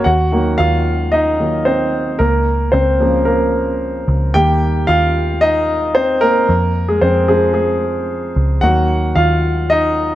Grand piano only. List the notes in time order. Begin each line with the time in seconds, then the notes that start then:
0.04 F#4 F#5
0.32 D#3 F#3 A#3
0.58 F4 F5
1.12 D#4 D#5
1.39 D#3 F#3 A#3
1.65 C4 C5
2.19 A#3 A#4
2.72 C4 C5
3.00 C#3 F3 A#3
3.25 A#3 A#4
4.34 D#3 G3 A#3 G4 G5
4.87 F4 F5
5.41 D#4 D#5
5.95 C4 C5
6.21 A#3 A#4
6.89 G#3 G#4
7.01 C4 C5
7.28 F3 G#3 C4 G#4
7.54 G#3 G#4
8.61 D#3 F#3 A#3 F#4 F#5
9.15 F4 F5
9.70 D#4 D#5